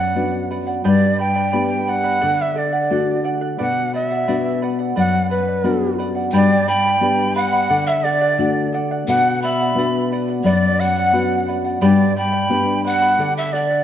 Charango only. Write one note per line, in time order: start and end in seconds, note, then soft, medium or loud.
0.00 0.15 D5 soft
0.00 0.15 F#5 soft
0.15 0.49 B4 medium
0.15 0.50 D5 medium
0.15 0.50 F#5 medium
0.51 0.68 B4 soft
0.51 0.67 D5 medium
0.51 0.66 F#5 medium
0.67 0.84 D5 soft
0.67 0.84 F#5 soft
0.84 1.19 G4 medium
0.84 1.17 B4 medium
0.84 1.18 D5 medium
0.84 1.17 G5 medium
0.84 1.18 B5 medium
1.18 1.35 B4 soft
1.18 1.35 D5 medium
1.18 1.36 G5 soft
1.18 1.34 B5 medium
1.35 1.51 B4 soft
1.35 1.52 D5 soft
1.35 1.52 B5 soft
1.52 1.86 B4 medium
1.52 1.87 D5 medium
1.52 1.86 G5 medium
1.52 1.87 B5 medium
1.87 2.04 B4 medium
1.87 2.03 D5 soft
1.87 2.04 G5 medium
1.87 2.03 B5 medium
2.04 2.22 B4 soft
2.04 2.20 D5 soft
2.04 2.21 B5 soft
2.21 2.54 A4 medium
2.21 2.55 D5 medium
2.21 2.56 F#5 medium
2.55 2.73 A4 medium
2.55 2.73 D5 medium
2.55 2.71 F#5 soft
2.73 2.90 D5 soft
2.73 2.90 F#5 soft
2.91 3.22 A4 medium
2.91 3.23 D5 medium
2.91 3.24 F#5 medium
3.24 3.42 A4 soft
3.24 3.41 D5 medium
3.24 3.40 F#5 medium
3.41 3.58 D5 soft
3.41 3.58 F#5 soft
3.58 3.92 B4 medium
3.58 3.93 D5 medium
3.58 3.94 F#5 medium
3.93 4.11 B4 soft
3.93 4.11 D5 soft
3.93 4.09 F#5 medium
4.10 4.27 D5 soft
4.10 4.27 F#5 soft
4.28 4.61 B4 medium
4.28 4.61 D5 medium
4.28 4.62 F#5 medium
4.62 4.79 B4 medium
4.62 4.79 D5 medium
4.62 4.77 F#5 medium
4.79 4.95 D5 soft
4.79 4.96 F#5 soft
4.96 5.29 B4 medium
4.96 5.29 D5 medium
4.96 5.30 F#5 medium
5.30 5.47 B4 medium
5.30 5.47 D5 medium
5.30 5.46 F#5 medium
5.47 5.63 D5 soft
5.47 5.64 F#5 soft
5.64 5.97 B4 medium
5.64 5.98 D5 medium
5.64 5.98 F#5 medium
5.98 6.16 B4 medium
5.98 6.15 D5 medium
5.98 6.14 F#5 medium
6.15 6.32 D5 soft
6.15 6.33 F#5 soft
6.33 6.68 G4 medium
6.33 6.66 B4 medium
6.33 6.67 D5 medium
6.33 6.66 G5 medium
6.33 6.68 B5 medium
6.67 6.85 B4 soft
6.67 6.84 D5 medium
6.67 6.85 G5 medium
6.67 6.83 B5 soft
6.85 7.01 B4 soft
6.85 7.01 D5 soft
6.85 7.02 B5 soft
7.02 7.34 B4 medium
7.02 7.35 D5 medium
7.02 7.33 G5 medium
7.02 7.35 B5 medium
7.34 7.53 B4 medium
7.34 7.52 D5 medium
7.34 7.53 G5 medium
7.34 7.51 B5 medium
7.53 7.71 B4 soft
7.53 7.68 D5 soft
7.53 7.70 B5 medium
7.70 8.03 A4 medium
7.70 8.04 D5 medium
7.70 8.04 F#5 medium
8.04 8.22 A4 medium
8.04 8.22 D5 medium
8.04 8.20 F#5 medium
8.21 8.38 D5 soft
8.21 8.38 F#5 medium
8.38 8.71 A4 medium
8.38 8.73 D5 medium
8.38 8.73 F#5 medium
8.73 8.90 A4 medium
8.73 8.91 D5 medium
8.73 8.90 F#5 medium
8.91 9.08 D5 soft
8.91 9.08 F#5 soft
9.08 9.42 B4 medium
9.08 9.43 D5 medium
9.08 9.43 F#5 medium
9.43 9.60 B4 medium
9.43 9.60 D5 medium
9.43 9.59 F#5 medium
9.61 9.77 D5 soft
9.61 9.77 F#5 medium
9.77 10.10 B4 medium
9.77 10.11 D5 medium
9.77 10.11 F#5 medium
10.12 10.28 B4 soft
10.12 10.29 D5 medium
10.12 10.27 F#5 medium
10.29 10.45 D5 soft
10.29 10.45 F#5 medium
10.45 10.79 B4 medium
10.45 10.80 D5 medium
10.45 10.80 F#5 medium
10.80 10.97 B4 soft
10.80 10.97 D5 medium
10.80 10.96 F#5 medium
10.97 11.13 D5 soft
10.97 11.14 F#5 soft
11.13 11.47 B4 medium
11.13 11.48 D5 medium
11.13 11.49 F#5 medium
11.48 11.65 B4 soft
11.48 11.65 D5 medium
11.48 11.63 F#5 medium
11.65 11.81 D5 soft
11.65 11.81 F#5 soft
11.81 12.16 G4 medium
11.81 12.15 B4 medium
11.81 12.16 D5 medium
11.81 12.15 G5 medium
11.81 12.15 B5 medium
12.16 12.32 B4 soft
12.16 12.32 D5 medium
12.16 12.33 G5 medium
12.16 12.31 B5 medium
12.32 12.49 B4 soft
12.32 12.49 D5 soft
12.32 12.50 B5 soft
12.50 12.83 B4 medium
12.50 12.84 D5 medium
12.50 12.83 G5 medium
12.50 12.84 B5 medium
12.84 13.02 B4 medium
12.84 13.01 D5 medium
12.84 13.02 G5 medium
12.84 13.00 B5 medium
13.02 13.20 B4 soft
13.02 13.18 D5 soft
13.02 13.19 B5 medium
13.19 13.52 A4 medium
13.19 13.53 D5 medium
13.19 13.53 F#5 medium
13.53 13.71 A4 soft
13.53 13.71 D5 medium
13.53 13.70 F#5 medium
13.71 13.84 D5 soft
13.71 13.84 F#5 soft